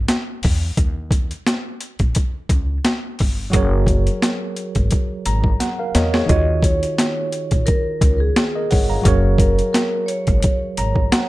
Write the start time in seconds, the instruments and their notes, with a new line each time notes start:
0.08 snare, closed hi-hat
0.43 upright bass E2, kick, open hi-hat
0.77 upright bass D#2, kick, closed hi-hat
1.11 kick, closed hi-hat
1.31 closed hi-hat
1.47 snare, closed hi-hat
1.81 closed hi-hat
1.99 upright bass A#1, kick, closed hi-hat
2.15 kick, closed hi-hat
2.49 upright bass C#2, kick, closed hi-hat
2.85 snare, closed hi-hat
3.19 upright bass G1, kick, open hi-hat
3.50 upright bass F#1, tine electric piano F#3 F#4 G#4, kick, closed hi-hat
3.55 tine electric piano A#4 C#5
3.87 kick, closed hi-hat
4.07 closed hi-hat
4.22 snare, closed hi-hat
4.56 closed hi-hat
4.75 upright bass G#1, kick, closed hi-hat
4.91 kick, closed hi-hat
5.26 upright bass G#1, tine electric piano A#5, closed hi-hat
5.44 kick
5.60 tine electric piano F#5, snare, closed hi-hat
5.79 tine electric piano A#4 F5
5.95 upright bass E2, tine electric piano A#4 C#5 D#5, snare, closed hi-hat
6.14 tine electric piano G#4 C#5, snare
6.26 upright bass D#2, tine electric piano D#3 D#4 F4, vibraphone D#5, kick, closed hi-hat
6.30 tine electric piano F#4 C#5
6.63 vibraphone C#5, kick, closed hi-hat
6.83 closed hi-hat
6.98 snare, closed hi-hat
7.32 closed hi-hat
7.51 upright bass A#1, kick, closed hi-hat
7.66 vibraphone A#4, kick, closed hi-hat
8.01 upright bass C#2, kick, closed hi-hat
8.20 vibraphone G#4
8.36 snare, closed hi-hat
8.56 tine electric piano A#4 D#5
8.71 upright bass G1, tine electric piano C#5 F#5, kick, open hi-hat
8.90 tine electric piano F5 A#5
9.02 upright bass F#1, tine electric piano F#3 F#4 G#4, kick, closed hi-hat
9.07 tine electric piano A#4 C#5
9.38 vibraphone A#4, kick, closed hi-hat
9.59 closed hi-hat
9.73 vibraphone A#4, snare, closed hi-hat
10.06 vibraphone C#5, closed hi-hat
10.27 upright bass G#1, kick, closed hi-hat
10.42 kick, closed hi-hat
10.77 upright bass G#1, tine electric piano A#5, closed hi-hat
10.95 kick
11.12 tine electric piano F#5, snare, closed hi-hat